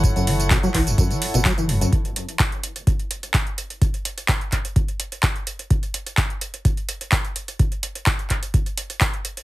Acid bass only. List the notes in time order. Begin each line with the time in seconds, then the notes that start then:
0.04 F#2
0.16 F#2
0.27 E3
0.40 F#3
0.51 B2
0.63 F#3
0.74 E3
0.87 F#2
0.98 F#2
1.10 E3
1.22 F#3
1.34 B2
1.45 F#3
1.58 E3
1.69 F#2
1.81 F#2